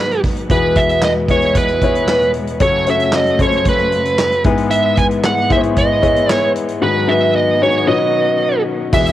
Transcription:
0.00 0.46 G#2 medium
0.00 0.47 G#2 medium
0.00 0.46 D#3 medium
0.00 0.48 F#3 medium
0.00 0.46 B3 medium
0.00 0.52 D#4 medium
0.00 0.52 F#4 medium
0.00 0.51 G#4 medium
0.00 0.52 A#4 medium
0.00 0.20 B4 medium
0.00 0.52 B4 medium
0.11 closed hi-hat soft
0.24 kick loud
0.24 snare soft
0.24 open hi-hat medium
0.37 closed hi-hat medium
0.50 2.59 E2 medium
0.50 2.57 E2 soft
0.50 2.59 B2 medium
0.50 2.57 B2 medium
0.50 2.58 G#3 medium
0.50 1.21 B3 medium
0.50 1.21 E4 medium
0.50 1.21 G#4 medium
0.50 0.78 B4 medium
0.50 1.21 B4 medium
0.50 kick loud
0.50 closed hi-hat medium
0.76 1.01 E5 medium
0.76 kick medium
0.76 closed hi-hat medium
0.89 closed hi-hat soft
1.02 1.11 D#5 medium
1.02 snare medium
1.02 clap medium
1.28 1.76 B3 medium
1.28 1.76 E4 medium
1.28 1.76 G#4 medium
1.28 1.77 B4 medium
1.28 1.57 C#5 medium
1.28 kick medium
1.28 closed hi-hat medium
1.42 closed hi-hat soft
1.55 2.31 B4 medium
1.55 kick medium
1.55 closed hi-hat medium
1.68 closed hi-hat soft
1.81 2.53 B3 medium
1.81 2.53 E4 medium
1.81 2.53 G#4 medium
1.81 2.53 C#5 medium
1.81 kick medium
1.81 closed hi-hat medium
1.95 closed hi-hat medium
2.08 snare loud
2.08 clap medium
2.21 closed hi-hat soft
2.34 closed hi-hat medium
2.47 closed hi-hat medium
2.59 4.43 F#2 medium
2.59 4.41 F#2 medium
2.59 4.43 C#3 medium
2.59 4.41 C#3 medium
2.59 4.43 A3 medium
2.59 2.84 C#4 medium
2.59 2.84 F#4 medium
2.59 2.84 A4 medium
2.59 2.84 C#5 medium
2.59 2.89 C#5 medium
2.59 kick loud
2.59 closed hi-hat loud
2.86 3.34 C#4 medium
2.86 3.34 F#4 medium
2.86 3.34 A4 medium
2.86 3.34 C#5 medium
2.86 closed hi-hat medium
2.91 3.16 E5 medium
3.00 closed hi-hat medium
3.12 3.39 D#5 medium
3.12 snare loud
3.12 clap medium
3.26 closed hi-hat soft
3.39 4.34 C#4 medium
3.39 4.34 F#4 medium
3.39 4.34 A4 medium
3.39 3.46 C5 medium
3.39 3.66 C#5 medium
3.39 kick medium
3.39 closed hi-hat medium
3.46 4.37 C#5 medium
3.52 closed hi-hat soft
3.65 4.42 B4 medium
3.65 kick medium
3.65 closed hi-hat medium
3.78 closed hi-hat soft
3.92 closed hi-hat medium
4.05 closed hi-hat medium
4.19 snare loud
4.19 clap medium
4.32 closed hi-hat soft
4.44 7.83 G#2 medium
4.44 6.52 G#2 medium
4.44 6.80 E3 medium
4.44 6.52 G#3 medium
4.44 6.79 B3 medium
4.44 5.39 B3 medium
4.44 5.39 E4 medium
4.44 5.39 G#4 medium
4.44 5.39 B4 loud
4.44 kick loud
4.44 closed hi-hat medium
4.58 closed hi-hat medium
4.71 4.98 E5 medium
4.71 closed hi-hat medium
4.97 5.05 G#5 medium
4.97 kick medium
4.97 closed hi-hat medium
5.11 closed hi-hat soft
5.24 5.49 F#5 loud
5.24 snare loud
5.24 clap medium
5.37 closed hi-hat soft
5.50 5.97 B3 medium
5.50 5.97 E4 medium
5.50 5.97 G#4 medium
5.50 5.57 C5 medium
5.50 5.59 E5 medium
5.50 kick medium
5.50 closed hi-hat medium
5.57 6.01 C#5 medium
5.63 closed hi-hat soft
5.76 6.32 D#5 medium
5.76 kick medium
5.76 closed hi-hat medium
6.02 6.73 B3 medium
6.02 6.73 E4 medium
6.02 6.73 G#4 medium
6.02 6.73 C#5 medium
6.02 kick medium
6.02 closed hi-hat medium
6.16 closed hi-hat soft
6.30 6.52 C#5 medium
6.30 snare loud
6.30 clap loud
6.56 closed hi-hat medium
6.69 closed hi-hat medium
6.81 7.83 G#2 medium
6.81 7.83 D#3 medium
6.81 7.86 F#3 medium
6.81 8.90 B3 medium
6.81 7.05 D#4 medium
6.81 7.05 F#4 medium
6.81 7.05 G#4 medium
6.81 7.05 B4 medium
6.81 7.10 B4 loud
7.07 7.55 D#4 medium
7.07 7.55 F#4 medium
7.07 7.55 G#4 medium
7.07 7.55 B4 medium
7.07 7.35 E5 medium
7.36 7.62 D#5 medium
7.61 7.86 D#4 medium
7.61 7.86 F#4 medium
7.61 7.88 G#4 medium
7.61 7.86 C#5 medium
7.61 7.88 C#5 loud
7.87 8.89 B2 medium
7.87 8.92 D#3 medium
7.87 8.89 F#3 medium
7.87 8.92 C#4 medium
7.87 8.81 D#4 medium
7.87 8.81 F#4 medium
7.87 8.81 B4 medium
7.87 8.81 C#5 medium
7.87 8.63 D#5 medium
8.92 9.12 E2 medium
8.92 9.12 B2 medium
8.92 9.12 G#3 medium
8.92 9.12 E4 medium
8.92 9.12 G#4 medium
8.92 9.12 B4 medium
8.92 9.12 E5 medium
8.92 9.12 E5 loud
8.92 kick loud
8.92 crash medium
8.92 shaker medium
9.07 closed hi-hat soft
9.07 shaker medium

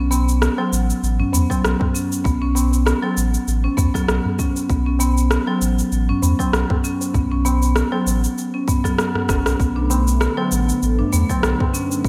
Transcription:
0.00 0.48 B1 medium
0.00 0.10 C#4 medium
0.11 0.40 B3 medium
0.11 tabla na medium
0.11 shaker medium
0.29 shaker soft
0.42 0.58 B3 medium
0.42 cross-stick medium
0.42 shaker soft
0.58 0.71 F#3 medium
0.58 tabla na medium
0.72 0.93 A1 medium
0.72 tabla tin medium
0.72 shaker medium
0.90 shaker soft
1.03 1.23 A1 medium
1.03 shaker soft
1.19 1.33 C#4 medium
1.19 tabla ge medium
1.33 1.44 E2 medium
1.33 1.49 B3 medium
1.33 tabla tin medium
1.33 shaker medium
1.50 1.63 F#3 loud
1.50 kick medium
1.50 tabla na medium
1.50 shaker soft
1.64 1.75 B1 loud
1.64 cross-stick medium
1.64 shaker soft
1.80 kick medium
1.80 tabla na medium
1.80 tabla tin medium
1.80 tabla ge medium
1.94 2.24 C#4 medium
1.94 shaker medium
2.11 tabla tin medium
2.11 shaker soft
2.25 2.93 B1 medium
2.25 2.35 B3 medium
2.25 kick loud
2.25 shaker soft
2.42 2.55 C#4 medium
2.55 2.85 B3 medium
2.55 tabla na medium
2.55 shaker medium
2.72 tabla na soft
2.72 shaker soft
2.86 3.02 B3 medium
2.86 cross-stick medium
2.86 shaker soft
3.03 3.16 F#3 medium
3.03 tabla na medium
3.17 3.38 A1 medium
3.17 tabla tin medium
3.17 shaker medium
3.34 shaker soft
3.48 3.68 A1 loud
3.48 shaker soft
3.64 3.77 C#4 medium
3.64 tabla tin medium
3.77 3.89 E2 medium
3.77 3.93 B3 medium
3.77 kick medium
3.77 tabla tin medium
3.77 tabla ge medium
3.77 shaker medium
3.94 4.08 F#3 loud
3.94 kick soft
3.94 cross-stick soft
3.94 shaker soft
4.09 4.19 B1 loud
4.09 cross-stick medium
4.09 shaker soft
4.25 tabla ge medium
4.39 4.68 C#4 medium
4.39 kick medium
4.39 tabla tin medium
4.39 shaker medium
4.56 tabla tin medium
4.56 shaker soft
4.69 5.38 B1 loud
4.69 4.79 B3 medium
4.69 kick loud
4.69 shaker soft
4.86 5.00 C#4 medium
4.99 5.29 B3 medium
4.99 tabla na medium
4.99 shaker medium
5.18 shaker soft
5.30 5.47 B3 medium
5.30 cross-stick medium
5.30 shaker soft
5.47 5.61 F#3 loud
5.47 tabla na medium
5.61 5.82 A1 medium
5.61 tabla tin medium
5.61 shaker medium
5.79 shaker soft
5.92 6.13 A1 loud
5.92 shaker soft
6.09 6.22 C#4 medium
6.09 tabla ge medium
6.22 6.33 E2 loud
6.22 6.38 B3 medium
6.22 tabla tin medium
6.22 shaker medium
6.39 6.53 F#3 medium
6.39 kick medium
6.39 tabla na medium
6.39 shaker soft
6.53 6.64 B1 loud
6.53 cross-stick medium
6.53 shaker soft
6.70 kick medium
6.70 tabla na medium
6.70 tabla tin medium
6.70 tabla ge medium
6.84 7.13 C#4 medium
6.84 shaker medium
7.01 tabla tin medium
7.01 shaker soft
7.14 7.83 B1 medium
7.14 7.24 B3 medium
7.14 kick loud
7.14 tabla ge medium
7.14 shaker soft
7.32 7.45 C#4 medium
7.45 7.75 B3 loud
7.45 tabla na medium
7.45 shaker medium
7.62 tabla na soft
7.62 shaker soft
7.76 7.92 B3 medium
7.76 cross-stick medium
7.76 shaker soft
7.92 8.06 F#3 medium
7.92 tabla na medium
8.06 8.27 A1 medium
8.06 tabla tin medium
8.06 shaker medium
8.24 shaker soft
8.38 shaker soft
8.54 8.67 C#4 medium
8.54 tabla tin medium
8.68 8.83 B3 medium
8.68 kick medium
8.68 tabla tin medium
8.68 tabla ge medium
8.68 shaker medium
8.85 8.98 F#3 loud
8.85 kick medium
8.85 cross-stick soft
8.85 shaker soft
8.98 cross-stick medium
8.98 shaker soft
9.15 cross-stick soft
9.15 tabla ge medium
9.29 9.40 F#1 loud
9.29 9.58 C#4 medium
9.29 kick loud
9.29 cross-stick medium
9.29 tabla tin medium
9.29 shaker medium
9.46 9.55 B1 loud
9.46 cross-stick medium
9.46 tabla tin medium
9.46 shaker soft
9.59 10.28 B1 loud
9.59 12.09 D3 medium
9.59 12.09 A3 medium
9.59 9.69 B3 medium
9.59 12.09 B3 medium
9.59 kick loud
9.59 shaker soft
9.76 9.89 D4 medium
9.90 10.20 B3 medium
9.90 tabla na medium
9.90 shaker medium
10.08 shaker soft
10.21 10.37 B3 medium
10.21 cross-stick medium
10.21 shaker soft
10.37 10.51 F#3 medium
10.37 tabla na medium
10.52 10.72 A1 medium
10.52 tabla tin medium
10.52 shaker medium
10.69 shaker soft
10.82 11.03 A1 loud
10.82 shaker soft
10.99 11.12 D4 medium
10.99 tabla ge medium
11.13 11.24 E2 medium
11.13 11.28 B3 medium
11.13 tabla tin medium
11.13 shaker medium
11.29 11.43 F#3 medium
11.29 kick medium
11.29 tabla na medium
11.29 shaker soft
11.43 11.54 B1 loud
11.43 cross-stick medium
11.43 shaker soft
11.60 kick loud
11.60 tabla na medium
11.60 tabla tin medium
11.60 tabla ge medium
11.74 12.03 C#4 medium
11.74 shaker medium
11.90 tabla tin medium
11.90 shaker soft
12.05 12.09 B1 medium
12.05 12.09 B3 medium
12.05 kick loud
12.05 shaker soft

